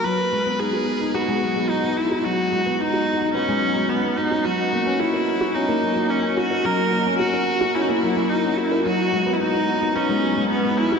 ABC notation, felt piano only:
X:1
M:4/4
L:1/16
Q:1/4=109
K:F#mix
V:1 name="Felt piano"
F, z G, B, D F z D B, G, F, G, z B, D F | F, z G, B, D F z D B, G, F, G, z B, D F | F, z A, C F A z F C A, F, A, z C F A | F, z A, C F A z F C A, F, A, z C F A |
F, z G, B, D D z D B, G, F, G, z B, D F |]